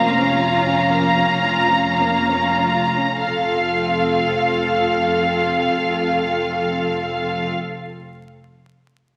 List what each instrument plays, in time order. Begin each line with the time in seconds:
Already playing: double bass section F1, cello section F2, violin section A#3 F5 A#5, viola section C#4 F4
0.19 violin section C#4
0.42 violin section F4
0.66 violin section C#4
0.90 violin section A#3
1.16 violin section C#4
1.42 violin section F4
1.71 violin section C#4
1.99 violin section A#3
2.30 violin section C#4
2.61 violin section F4
2.93 violin section C#4
3.23 double bass section F1, cello section F2, viola section C4 F4, violin section A4 F5